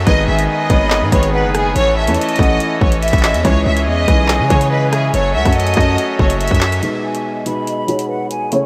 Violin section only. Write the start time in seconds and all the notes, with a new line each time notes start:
0.07 D#5
0.28 E5
0.49 D#5
1.12 C#5
1.33 B4
1.55 G#4
1.76 C#5
1.97 E5
2.18 D#5
2.81 C#5
3.02 E5
3.45 C#5
3.66 E5
3.87 D#5
4.51 C#5
4.71 B4
4.92 G#4
5.14 C#5
5.35 E5
5.56 D#5
6.19 C#5
6.41 E5
6.83 D#5
7.04 E5
7.25 D#5
7.88 C#5
8.09 B4
8.30 G#4
8.52 C#5